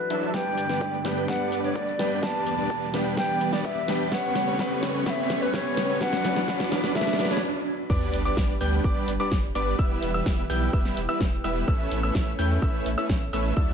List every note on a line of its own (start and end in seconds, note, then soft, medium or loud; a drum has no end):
0.00 0.32 E3 medium
0.00 0.10 F#3 medium
0.00 0.32 F#3 medium
0.00 0.10 D4 medium
0.00 0.32 D4 medium
0.00 0.10 E4 medium
0.00 0.36 F#4 medium
0.00 0.36 A4 medium
0.00 0.26 B4 loud
0.00 riser medium
0.10 0.31 F#3 medium
0.10 0.31 D4 medium
0.10 0.31 E4 medium
0.10 0.31 A4 medium
0.10 0.31 B4 medium
0.10 0.31 E5 medium
0.10 open hi-hat loud
0.10 cabasa medium
0.23 cabasa soft
0.27 0.35 A5 medium
0.33 2.21 G2 medium
0.33 2.21 D3 medium
0.33 1.01 G3 medium
0.33 0.67 G3 medium
0.33 1.02 B3 medium
0.33 0.67 B3 medium
0.33 2.21 B3 medium
0.33 0.67 D4 medium
0.33 1.02 D4 medium
0.33 0.67 B4 medium
0.33 1.03 B4 medium
0.33 0.67 D5 medium
0.33 1.05 G5 loud
0.33 kick loud
0.33 snare soft
0.33 cabasa soft
0.46 cabasa soft
0.58 open hi-hat loud
0.58 cabasa medium
0.69 0.97 G3 medium
0.69 0.97 B3 medium
0.69 0.97 D4 medium
0.69 0.97 B4 medium
0.69 0.97 D5 medium
0.69 snare soft
0.69 cabasa soft
0.81 kick loud
0.81 cabasa soft
0.94 cabasa soft
1.04 1.26 G3 medium
1.04 1.26 B3 medium
1.04 1.26 D4 medium
1.04 1.27 D4 medium
1.04 1.26 B4 medium
1.04 1.27 B4 medium
1.04 1.26 G5 medium
1.04 snare medium
1.04 open hi-hat loud
1.04 cabasa medium
1.17 cabasa soft
1.27 1.96 G3 medium
1.27 1.61 G3 medium
1.27 1.96 B3 medium
1.27 1.61 B3 medium
1.27 1.61 D4 medium
1.27 1.97 D4 medium
1.27 1.61 B4 medium
1.27 1.97 B4 medium
1.27 1.61 D5 medium
1.27 1.61 F#5 loud
1.27 kick loud
1.27 snare medium
1.27 cabasa soft
1.41 cabasa soft
1.52 open hi-hat loud
1.52 cabasa medium
1.64 1.92 G3 medium
1.64 1.92 B3 medium
1.64 1.92 D4 medium
1.64 1.92 B4 medium
1.64 1.77 C#5 medium
1.64 1.92 D5 medium
1.64 cabasa soft
1.76 2.24 D5 medium
1.76 kick loud
1.76 cabasa soft
1.88 cabasa soft
1.98 2.20 G3 medium
1.98 2.21 B3 medium
1.98 2.20 B3 medium
1.98 2.20 D4 medium
1.98 2.21 D4 medium
1.98 2.20 B4 medium
1.98 2.22 B4 medium
1.98 2.20 G5 medium
1.98 snare medium
1.98 open hi-hat loud
1.98 cabasa medium
2.12 cabasa soft
2.22 4.10 E2 medium
2.22 4.10 B2 medium
2.22 2.90 G3 medium
2.22 2.56 G3 medium
2.22 4.10 G3 loud
2.22 2.91 B3 medium
2.22 2.55 B3 medium
2.22 2.55 D4 medium
2.22 2.91 D4 medium
2.22 2.55 B4 medium
2.22 2.92 B4 medium
2.22 2.55 D5 medium
2.22 2.94 A5 loud
2.22 kick loud
2.22 snare medium
2.22 cabasa soft
2.35 cabasa soft
2.46 open hi-hat medium
2.46 cabasa medium
2.58 2.86 G3 medium
2.58 2.86 B3 medium
2.58 2.86 D4 medium
2.58 2.86 B4 medium
2.58 2.86 D5 medium
2.58 cabasa soft
2.70 kick loud
2.70 cabasa soft
2.83 cabasa soft
2.93 3.15 G3 medium
2.93 3.15 B3 medium
2.93 3.15 D4 medium
2.93 3.16 D4 medium
2.93 3.15 B4 medium
2.93 3.16 B4 medium
2.93 3.15 G5 medium
2.93 snare medium
2.93 open hi-hat loud
2.93 cabasa medium
3.06 cabasa soft
3.16 3.85 G3 medium
3.16 3.50 G3 medium
3.16 3.85 B3 medium
3.16 3.50 B3 medium
3.16 3.50 D4 medium
3.16 3.86 D4 medium
3.16 3.50 B4 medium
3.16 3.86 B4 medium
3.16 3.50 D5 medium
3.16 3.54 G5 loud
3.16 kick loud
3.16 snare medium
3.16 cabasa soft
3.30 cabasa soft
3.41 open hi-hat loud
3.41 cabasa medium
3.53 3.81 G3 medium
3.53 3.81 B3 medium
3.53 3.81 D4 medium
3.53 3.81 B4 medium
3.53 3.66 D5 medium
3.53 3.81 D5 medium
3.53 snare medium
3.53 cabasa soft
3.65 4.11 E5 loud
3.65 kick loud
3.65 cabasa soft
3.77 cabasa soft
3.87 4.09 G3 medium
3.87 4.10 B3 medium
3.87 4.09 B3 medium
3.87 4.09 D4 medium
3.87 4.10 D4 medium
3.87 4.09 B4 medium
3.87 4.11 B4 medium
3.87 4.09 G5 medium
3.87 snare medium
3.87 open hi-hat loud
3.87 cabasa medium
4.01 cabasa soft
4.11 5.99 C#3 medium
4.11 4.56 G3 medium
4.11 4.44 G3 medium
4.11 5.99 A3 medium
4.11 4.57 B3 medium
4.11 4.44 B3 medium
4.11 5.99 B3 medium
4.11 4.44 C#4 medium
4.11 4.57 C#4 medium
4.11 4.44 B4 medium
4.11 4.58 B4 medium
4.11 4.44 C#5 medium
4.11 4.79 F#5 loud
4.11 kick loud
4.11 snare medium
4.11 cabasa soft
4.24 cabasa soft
4.35 snare medium
4.35 open hi-hat medium
4.35 cabasa medium
4.47 4.57 G3 medium
4.47 4.57 B3 medium
4.47 4.57 C#4 medium
4.47 4.57 B4 medium
4.47 4.57 C#5 loud
4.47 cabasa soft
4.58 5.04 G3 medium
4.58 4.92 G3 medium
4.58 5.04 B3 medium
4.58 4.92 B3 medium
4.58 4.92 C#4 medium
4.58 5.05 C#4 medium
4.58 4.92 B4 medium
4.58 5.05 B4 loud
4.58 4.92 C#5 loud
4.58 kick loud
4.58 snare medium
4.58 cabasa soft
4.72 cabasa soft
4.83 snare medium
4.83 open hi-hat loud
4.83 cabasa medium
4.94 5.04 G3 medium
4.94 5.04 B3 medium
4.94 5.04 C#4 medium
4.94 5.04 B4 medium
4.94 5.04 C#5 medium
4.94 cabasa soft
5.05 5.51 G3 medium
5.05 5.39 G3 medium
5.05 5.51 B3 medium
5.05 5.39 B3 medium
5.05 5.39 C#4 medium
5.05 5.52 C#4 medium
5.05 5.39 B4 medium
5.05 5.52 B4 medium
5.05 5.39 C#5 loud
5.05 5.11 F#5 medium
5.05 kick loud
5.05 snare medium
5.05 cabasa soft
5.10 5.43 E5 loud
5.19 cabasa soft
5.30 snare medium
5.30 open hi-hat loud
5.30 cabasa medium
5.42 5.52 G3 medium
5.42 5.52 B3 medium
5.42 5.52 C#4 medium
5.42 5.55 B4 medium
5.42 5.52 B4 medium
5.42 5.52 C#5 loud
5.42 cabasa soft
5.52 5.98 G3 medium
5.52 5.86 G3 medium
5.52 5.99 B3 medium
5.52 5.86 B3 medium
5.52 5.86 C#4 medium
5.52 5.99 C#4 medium
5.52 5.86 B4 medium
5.52 6.00 B4 medium
5.52 5.86 C#5 medium
5.52 6.00 C#5 loud
5.52 kick loud
5.52 snare medium
5.52 cabasa soft
5.66 cabasa soft
5.77 snare medium
5.77 open hi-hat loud
5.77 cabasa medium
5.89 5.99 G3 medium
5.89 5.99 B3 medium
5.89 5.99 C#4 medium
5.89 5.99 B4 medium
5.89 5.99 C#5 medium
5.89 cabasa soft
6.00 7.41 E3 medium
6.00 6.22 F#3 medium
6.00 6.23 F#3 medium
6.00 7.41 F#3 medium
6.00 6.22 B3 medium
6.00 6.23 B3 medium
6.00 6.23 D4 medium
6.00 7.41 D4 medium
6.00 6.23 D4 medium
6.00 6.23 B4 medium
6.00 6.23 D5 loud
6.00 6.68 F#5 loud
6.00 kick loud
6.00 snare medium
6.00 cabasa soft
6.13 snare medium
6.13 cabasa soft
6.23 6.45 F#3 medium
6.23 6.46 F#3 medium
6.23 6.46 B3 medium
6.23 6.46 D4 medium
6.23 6.46 B4 medium
6.23 6.47 B4 medium
6.23 6.46 D5 medium
6.23 snare loud
6.23 open hi-hat loud
6.23 cabasa medium
6.36 snare medium
6.36 cabasa soft
6.47 6.69 F#3 medium
6.47 6.70 F#3 medium
6.47 6.70 B3 medium
6.47 6.70 D4 medium
6.47 6.70 B4 medium
6.47 6.70 B4 loud
6.47 6.70 D5 loud
6.47 kick loud
6.47 snare medium
6.47 cabasa soft
6.60 snare medium
6.60 cabasa soft
6.71 6.93 F#3 medium
6.71 6.93 B3 medium
6.71 6.93 D4 medium
6.71 6.94 D4 medium
6.71 6.93 B4 medium
6.71 6.94 B4 medium
6.71 6.93 D5 loud
6.71 snare loud
6.71 open hi-hat loud
6.71 cabasa medium
6.84 snare medium
6.84 cabasa soft
6.94 7.16 F#3 medium
6.94 7.17 F#3 medium
6.94 7.17 B3 medium
6.94 7.17 D4 medium
6.94 7.17 B4 medium
6.94 7.18 B4 loud
6.94 7.17 D5 medium
6.94 7.28 E5 loud
6.94 kick loud
6.94 snare loud
6.94 cabasa soft
7.01 snare medium
7.07 snare medium
7.07 open hi-hat medium
7.07 cabasa soft
7.13 snare medium
7.18 7.40 F#3 medium
7.18 7.41 F#3 medium
7.18 7.41 B3 medium
7.18 7.41 D4 medium
7.18 7.41 B4 medium
7.18 7.41 D5 loud
7.18 snare loud
7.18 open hi-hat loud
7.18 cabasa medium
7.25 snare medium
7.31 7.42 C#5 medium
7.31 snare medium
7.31 cabasa soft
7.37 snare loud
7.90 8.09 G1 medium
7.90 8.22 G3 medium
7.90 9.77 G3 medium
7.90 8.22 B3 medium
7.90 9.77 D4 medium
7.90 8.22 D4 medium
7.90 9.77 B4 medium
7.90 8.22 B4 medium
7.90 8.22 D5 loud
7.90 8.22 D6 medium
7.90 kick loud
7.90 crash loud
7.90 sub drop medium
7.90 cabasa soft
8.02 cabasa soft
8.13 8.33 G1 loud
8.13 open hi-hat loud
8.13 cabasa medium
8.25 8.53 G3 medium
8.25 8.53 B3 medium
8.25 8.53 D4 medium
8.25 8.53 B4 medium
8.25 8.53 D5 loud
8.25 8.53 D6 medium
8.25 cabasa soft
8.37 8.57 G1 loud
8.37 kick loud
8.37 snare loud
8.37 cabasa soft
8.49 cabasa soft
8.61 8.80 D2 loud
8.61 8.81 G3 medium
8.61 8.81 B3 medium
8.61 8.81 D4 medium
8.61 8.81 B4 medium
8.61 8.81 G5 medium
8.61 8.82 G6 medium
8.61 open hi-hat loud
8.61 cabasa medium
8.73 cabasa soft
8.84 9.04 G1 medium
8.84 9.12 G3 medium
8.84 9.12 B3 medium
8.84 9.12 D4 medium
8.84 9.12 B4 medium
8.84 9.12 D5 medium
8.84 9.12 D6 medium
8.84 kick loud
8.84 cabasa soft
8.97 cabasa soft
9.08 9.18 G1 loud
9.08 open hi-hat loud
9.08 cabasa medium
9.20 9.37 G3 loud
9.20 9.37 B3 medium
9.20 9.37 D4 medium
9.20 9.37 B4 medium
9.20 9.37 D5 loud
9.20 9.37 D6 loud
9.20 cabasa soft
9.32 9.51 G1 loud
9.32 kick loud
9.32 snare loud
9.32 cabasa soft
9.44 cabasa soft
9.55 9.75 G1 medium
9.55 9.76 G3 medium
9.55 9.76 B3 medium
9.55 9.76 D4 medium
9.55 9.76 B4 medium
9.55 9.76 D5 medium
9.55 9.76 D6 medium
9.55 open hi-hat loud
9.55 cabasa medium
9.68 cabasa soft
9.79 9.98 E1 medium
9.79 11.66 E3 medium
9.79 10.11 G3 medium
9.79 13.53 B3 medium
9.79 10.11 B3 medium
9.79 10.11 E4 medium
9.79 11.66 G4 medium
9.79 10.11 B4 medium
9.79 10.11 E5 loud
9.79 10.11 E6 loud
9.79 kick loud
9.79 cabasa soft
9.91 cabasa soft
10.02 10.22 E1 loud
10.02 open hi-hat loud
10.02 cabasa medium
10.14 10.42 G3 medium
10.14 10.42 B3 medium
10.14 10.42 E4 medium
10.14 10.42 B4 medium
10.14 10.42 E5 loud
10.14 10.42 E6 medium
10.14 cabasa soft
10.26 10.46 E1 loud
10.26 kick loud
10.26 snare loud
10.26 cabasa soft
10.39 cabasa soft
10.50 10.69 B1 loud
10.50 10.70 G3 medium
10.50 10.70 B3 medium
10.50 10.70 E4 medium
10.50 10.70 B4 medium
10.50 10.70 G5 medium
10.50 10.71 G6 medium
10.50 open hi-hat loud
10.50 cabasa medium
10.62 cabasa soft
10.73 10.93 E1 loud
10.73 11.01 G3 medium
10.73 11.01 B3 medium
10.73 11.01 E4 medium
10.73 11.01 B4 medium
10.73 11.01 E5 medium
10.73 11.01 E6 medium
10.73 kick loud
10.73 cabasa soft
10.85 snare soft
10.85 cabasa soft
10.97 11.07 E1 loud
10.97 open hi-hat loud
10.97 cabasa medium
11.09 11.26 G3 medium
11.09 11.26 B3 medium
11.09 11.26 E4 medium
11.09 11.26 B4 medium
11.09 11.26 E5 loud
11.09 11.26 E6 loud
11.09 cabasa soft
11.20 11.40 E1 loud
11.20 kick loud
11.20 snare loud
11.20 cabasa soft
11.33 cabasa soft
11.44 11.64 E1 medium
11.44 11.65 G3 medium
11.44 11.65 B3 medium
11.44 11.65 E4 medium
11.44 11.65 B4 medium
11.44 11.65 E5 medium
11.44 11.65 E6 medium
11.44 open hi-hat loud
11.44 cabasa medium
11.57 cabasa soft
11.68 11.87 A1 medium
11.68 13.55 A3 medium
11.68 12.00 A3 medium
11.68 13.55 C#4 loud
11.68 12.00 C#4 medium
11.68 12.00 E4 medium
11.68 12.00 B4 medium
11.68 12.00 E5 loud
11.68 12.00 E6 loud
11.68 kick loud
11.68 cabasa soft
11.80 cabasa soft
11.91 12.11 A1 loud
11.91 open hi-hat loud
11.91 cabasa medium
12.03 12.31 A3 medium
12.03 12.31 C#4 medium
12.03 12.31 E4 medium
12.03 12.31 B4 medium
12.03 12.31 E5 loud
12.03 12.31 E6 medium
12.03 cabasa soft
12.15 12.35 A1 loud
12.15 kick loud
12.15 snare loud
12.15 cabasa soft
12.28 cabasa soft
12.39 12.58 E2 loud
12.39 12.60 A3 medium
12.39 12.60 C#4 medium
12.39 12.60 E4 medium
12.39 12.60 B4 medium
12.39 12.60 G5 medium
12.39 12.59 G6 medium
12.39 open hi-hat loud
12.39 cabasa medium
12.51 cabasa soft
12.62 12.82 A1 loud
12.62 12.90 A3 medium
12.62 12.90 C#4 medium
12.62 12.90 E4 medium
12.62 12.90 B4 medium
12.62 12.90 E5 medium
12.62 12.90 E6 medium
12.62 kick loud
12.62 cabasa soft
12.75 cabasa soft
12.86 12.96 A1 loud
12.86 open hi-hat loud
12.86 cabasa medium
12.98 13.15 A3 loud
12.98 13.15 C#4 medium
12.98 13.15 E4 medium
12.98 13.15 B4 medium
12.98 13.15 E5 loud
12.98 13.15 E6 loud
12.98 cabasa soft
13.09 13.29 A1 loud
13.09 kick loud
13.09 snare loud
13.09 cabasa soft
13.22 cabasa soft
13.33 13.53 A1 medium
13.33 13.54 A3 medium
13.33 13.54 C#4 medium
13.33 13.54 E4 medium
13.33 13.54 B4 medium
13.33 13.54 E5 medium
13.33 13.54 E6 medium
13.33 open hi-hat loud
13.33 cabasa medium
13.46 cabasa soft
13.57 13.74 D2 loud
13.57 13.74 F#3 medium
13.57 13.74 D4 medium
13.57 13.74 E4 medium
13.57 13.74 A4 medium
13.57 13.74 E5 loud
13.57 13.74 E6 loud
13.57 kick loud
13.57 cabasa soft
13.69 cabasa soft